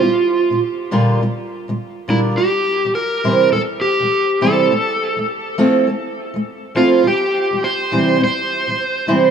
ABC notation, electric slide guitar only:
X:1
M:4/4
L:1/8
Q:"Swing 16ths" 1/4=103
K:Cmix
V:1 name="Electric slide guitar"
F2 z4 z E | G2 B2 A G2 A- | A2 z4 z F | G2 c2 c4 |]